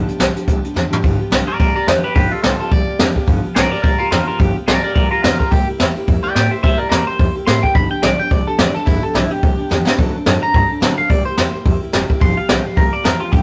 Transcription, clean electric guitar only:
Already playing: D5
1.47 A#4 D5
1.59 A#4 D5
1.75 A#4 D5
1.87 G4 B4
2.04 G4 B4
2.15 G4 B4
2.31 F4 A4
2.42 F4 A4
2.60 F4 A4
2.72 D5
3.55 A#4 D5
3.71 A#4 D5
3.82 A#4 D5
3.98 F4 A#4
4.11 F4 A#4
4.27 F4 A#4
4.39 G4
4.68 A#4 D5
4.83 A#4 D5
4.95 A#4 D5
5.11 F4 A#4
5.22 F4 A#4
5.39 F4 A#4
5.51 G4
6.23 D5 G5
6.35 D5 G5
6.51 C5 E5
6.63 C5 E5
6.78 A#4 D5
6.89 A#4 D5
7.07 C5
7.47 C6
7.63 G5
7.75 B5
7.91 G5
8.03 D5
8.20 G5
8.31 D5
8.47 A4
8.58 D5
8.74 A4
8.86 E4
9.03 A4
9.15 E4
9.31 G4
10.43 A#5
10.98 F5
11.10 D5
11.25 C5
12.22 C6
12.37 F5
12.49 G5
12.66 F5
12.77 A#4
12.93 D5
13.04 A#4
13.20 F4
13.32 G4

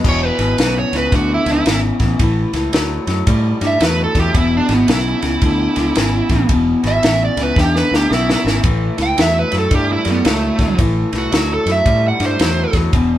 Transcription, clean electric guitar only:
0.04 E2 B2
0.38 E2 B2
0.58 E2 C#3
0.93 E2 C#3
1.12 E2 D3
1.46 E2 D3
1.66 E2 C#3
2.00 E2 C#3
2.20 A2 E3
2.54 A2 E3
2.73 A2 F#3
3.07 A2 F#3
3.27 A2 G3
3.61 A2 G3
3.80 A2 F#3
4.15 A2 F#3
4.34 E2 B2
4.68 E2 B2
4.88 E2 C#3
5.22 E2 C#3
5.42 E2 D3
5.76 E2 D3
5.95 E2 C#3
6.29 E2 C#3
6.49 E2 B2
6.83 E2 B2
7.02 E2 C#3
7.37 E2 C#3
7.56 E2 D3
7.91 E2 D3
8.10 E2 C#3
8.44 E2 C#3
8.64 A2 E3
8.97 A2 E3
9.17 A2 F#3
9.51 A2 F#3
9.71 A2 G3
10.05 A2 G3
10.25 A2 F#3
10.59 A2 F#3
10.78 A2 E3
11.12 A2 E3
11.32 A2 F#3
11.66 A2 F#3
11.86 A2 G3
12.20 A2 G3
12.40 A2 F#3
12.74 A2 F#3
12.94 E2 B2

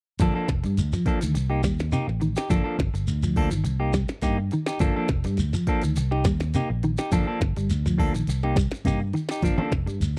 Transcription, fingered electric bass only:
0.20 G1
0.36 muted fingered electric bass stroke
0.48 F1
0.65 G2
0.79 D2
1.06 muted fingered electric bass stroke
1.23 D2
1.36 C2
1.64 D#2
2.08 A1
2.50 G1
2.78 G1
2.94 G1
3.08 D2
3.51 G1
3.64 C2
4.22 G2
4.80 G1
4.96 muted fingered electric bass stroke
5.09 F1
5.25 G2
5.39 D2
5.67 muted fingered electric bass stroke
5.84 D2
5.98 C2
6.25 D#2
6.70 A#1
7.12 G1
7.28 muted fingered electric bass stroke
7.41 G1
7.57 G1
7.70 D2
8.15 A#1
8.28 C2
8.72 muted fingered electric bass stroke
8.85 G2
9.43 G1
9.58 muted fingered electric bass stroke
9.71 F1
9.86 G2
10.00 D2

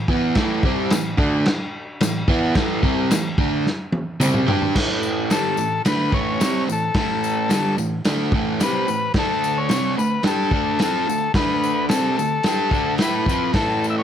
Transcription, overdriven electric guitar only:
0.08 E3 B3 E4
0.37 A2 E3 A3
0.65 C3 G3 C4
0.92 A2 E3
1.17 D3 A3 D4
2.01 A2 E3
2.28 E3 B3 E4
2.56 A2 E3 A3
2.83 C3 G3 C4
3.12 A2 E3
3.39 D3 A3 D4
4.20 C3 G3 C4
4.47 G3 D4 G4
4.75 A2 E3 A3
5.31 G2 D3 G3
5.58 A2 E3
5.85 D3 A3 D4
6.12 A2 E3 A3
6.41 C3 G3 C4
6.68 A2 E3
6.96 A2 E3 A3
7.49 G2 D3 G3
7.78 A2 E3
8.05 D3 A3 D4
8.34 A2 E3 A3
8.61 C3 G3 C4
8.87 A2 E3
9.16 D3 A3 D4
9.70 C3 G3 C4
9.97 D3 A3
10.23 G3 D4 G4
10.51 D3 A3 D4
10.80 F3 C4 F4
11.08 D3 A3
11.36 D3 A3 D4
11.90 C3 G3 C4
12.18 D3 A3
12.45 G3 D4 G4
12.72 D3 A3 D4
13.00 A3 E4 A4
13.28 F3 C4 F4
13.54 A2 E3 A3

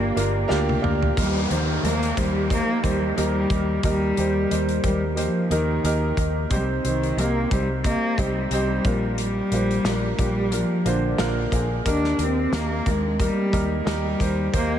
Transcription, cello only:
Already playing: A#3
1.19 G3
1.52 D#3
1.86 A#3
2.19 G3
2.54 A#3
2.86 G3
3.18 G3
3.87 G3
4.87 G3
5.20 F3
5.53 D#3
6.53 G3
6.86 D#3
7.19 A#3
7.52 G3
7.85 A#3
8.18 G3
8.53 G3
9.20 G3
10.19 G3
10.53 F3
10.86 D3
11.89 D4
12.23 C4
12.55 A#3
12.88 G#3
13.22 G3
13.83 G#3
13.90 G3
14.56 A#3

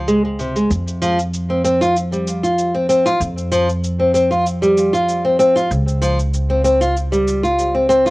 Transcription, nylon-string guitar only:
0.08 G#3
0.25 G#3
0.39 C3
0.56 G#3
1.02 F3
1.50 C4
1.64 C4
1.81 F4
2.12 G3
2.43 F4
2.75 C4
2.89 C4
3.06 F4
3.52 F3
4.00 C4
4.14 C4
4.31 F4
4.62 G3
4.93 F4
5.25 C4
5.39 C4
5.56 F4
6.02 F3
6.50 C4
6.64 C4
6.81 F4
7.12 G3
7.43 F4
7.74 C4
7.89 C4
8.06 F4

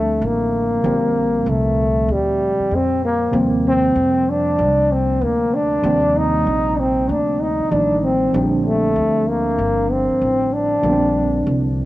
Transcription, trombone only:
Already playing: A3
0.25 A#3
1.49 A3
2.12 G3
2.75 C4
3.05 A#3
3.68 C4
4.30 D4
4.92 C4
5.23 A#3
5.54 D4
6.17 D#4
6.80 C4
7.11 D4
7.41 D#4
7.73 D4
7.99 D4
8.04 C4
8.66 A3
9.29 A#3
9.91 C4
10.53 D4

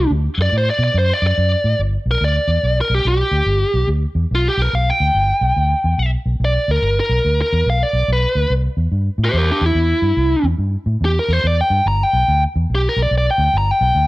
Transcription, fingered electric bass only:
0.10 D2
0.38 F#2
0.52 A2
0.79 B2
0.94 F#2
1.22 F#2
1.38 F#2
1.64 A2
1.79 G1
2.06 B1
2.21 D2
2.48 E2
2.63 B1
2.90 B1
3.05 B1
3.31 D2
3.46 G1
3.74 B1
3.88 D2
4.15 E2
4.31 B1
4.58 B1
4.73 B1
5.00 D2
5.15 G1
5.41 B1
5.57 D2
5.84 E2
5.98 B1
6.26 B1
6.40 B1
6.68 D2
6.82 G1
7.09 B1
7.25 D2
7.53 E2
7.66 B1
7.93 B1
8.08 B1
8.35 D2
8.50 C2
8.77 E2
8.92 G2
9.18 A2
9.33 E2
9.61 E2
9.75 E2
10.02 G2
10.17 C2
10.43 E2
10.58 G2
10.86 A2
11.01 E2
11.29 E2
11.44 E2
11.70 G2
11.86 G1
12.13 B1
12.28 D2
12.56 E2
12.70 B1
12.97 B1
13.11 B1
13.38 D2
13.53 G1
13.81 B1
13.95 D2

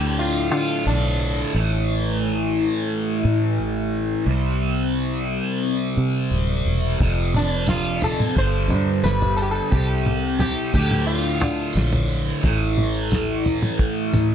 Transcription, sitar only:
Already playing: G4
0.19 F4
0.51 F4
0.87 D4
7.36 D4
7.69 F4
8.04 A4
8.38 C5
9.04 B4
9.36 A4
9.42 G4
9.51 A4
9.71 G4
10.40 G4
10.74 G4
11.06 F4

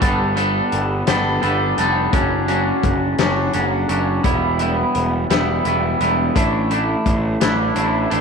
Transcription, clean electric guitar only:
0.00 G3 B3 D4 A4
0.36 G3 B3 D4 A4
1.07 G3 B3 D4 A4
1.42 G3 B3 D4 A4
1.78 G3 B3 D4 A4
2.13 F#3 C#4 D4
2.48 F#3 C#4 D4
3.19 F#3 C#4 D4
3.54 F#3 C#4 D4
3.89 F#3 C#4 D4
4.24 G3 B3 E4
4.60 G3 B3 E4
5.30 G3 B3 E4
5.65 G3 B3 E4
6.00 G3 B3 E4
6.35 A3 D4 E4
6.70 A3 D4 E4
7.41 A3 D4 E4
7.75 A3 D4 E4
8.10 A3 D4 E4

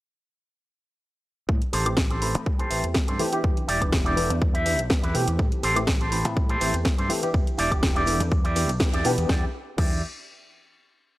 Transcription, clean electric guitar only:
1.73 G4 A4 C5
1.99 muted clean electric guitar stroke
2.10 G4 A4 C5
2.59 G4 A4 C5
3.07 G4 A4 C5
3.32 muted clean electric guitar stroke
3.68 E4 G4 D5
3.92 muted clean electric guitar stroke
4.05 E4 G4 D5
4.54 E4 G4 E5
5.03 E4 G4 B4
5.27 muted clean electric guitar stroke
5.63 G4 A4 C5
6.01 G4 A4 C5
6.49 G4 A4 C5
6.98 G4 A4 C5
7.22 muted clean electric guitar stroke
7.58 E4 G4 D5
7.83 muted clean electric guitar stroke
7.95 E4 G4 D5
8.44 E4 G4 D5
8.93 E4 G4 D5
9.18 muted clean electric guitar stroke
9.30 E4 G4 D5
9.78 E4 G4 D5

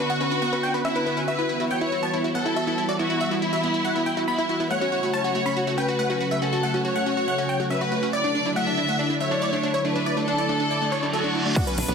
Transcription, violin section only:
0.00 F#4
0.85 E4
1.28 B4
1.71 C#5
2.35 A4
2.99 F#4
3.42 E4
4.28 E4
4.71 C#5
5.13 C#5
5.78 B4
6.42 A4
6.85 C#5
7.71 B4
8.14 D5
8.56 E5
9.21 C#5
9.85 B4
10.28 A4
11.13 F#4

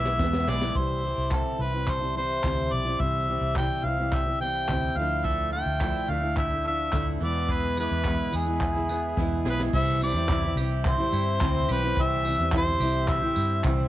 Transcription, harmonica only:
Already playing: E5
0.49 D5
0.76 C5
1.34 A4
1.62 B4
1.90 C5
2.17 C5
2.73 D5
3.00 E5
3.58 G5
3.85 F5
4.14 E5
4.41 G5
4.97 F5
5.25 E5
5.52 G5
6.10 F5
6.38 E5
6.67 E5
7.24 D5
7.52 B4
7.80 B4
8.36 G#4
9.49 B4
9.75 E5
10.03 D5
10.88 C5
11.72 B4
12.02 E5
12.57 C5
13.11 E5

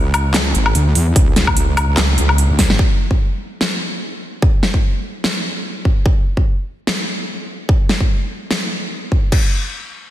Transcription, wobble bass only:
Already playing: C#2
0.55 G#1
0.75 D2
0.95 E2
1.16 C#2
1.36 C#2
1.57 C#2
1.97 C#2
2.18 C#2
2.50 C#2
2.70 G#1

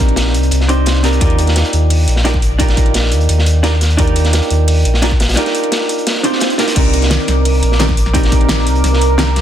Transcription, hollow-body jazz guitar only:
Already playing: C4 D4 D#4 G4 A#4
0.68 C4 D4 D#4 G4 C5
1.03 C4 D4 D#4 G4 A#4
1.20 D4 D#4 F4 G4 A#4
2.24 D4 D#4 F4 G4 A#4
2.58 D4 D#4 F4 G4 A#4
3.63 D4 D#4 F4 G4 A#4
3.97 D4 D#4 F4 G4 A#4
5.02 D4 D#4 F4 G4 A#4
5.36 D4 D#4 F4 G4 A#4
6.23 D4 D#4 F4 G4 C5
6.58 D4 D#4 F4 G4 A#4
6.75 C4 D4 D#4 G4 A#4
7.79 C4 D4 D#4 G4 A#4
8.13 C4 D4 D#4 G4 A#4
9.18 C4 D4 D#4 G4 A#4

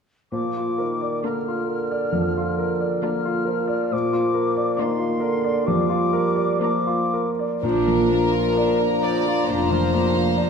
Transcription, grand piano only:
0.32 A#2
0.57 F4
0.78 A#4
1.01 D5
1.24 A#3
1.48 F4
1.68 A#4
1.91 D5
2.13 F3
2.37 F4
2.59 A#4
2.80 D5
3.02 A#3
3.25 F4
3.45 A#4
3.68 D5
3.92 A#2
4.13 F4
4.34 A#4
4.56 D5
4.79 A#3
4.99 F4
5.20 A#4
5.44 D5
5.68 F3
5.89 F4
6.13 A#4
6.36 D5
6.60 A#3
6.87 F4
7.14 A#4
7.39 D5
7.64 A#2
7.88 F3
8.09 A#3
8.32 F4
8.57 D5
8.80 A#4
9.03 D5
9.28 F4
9.49 A#2
9.72 F3
9.94 A#3
10.15 F4
10.36 D5

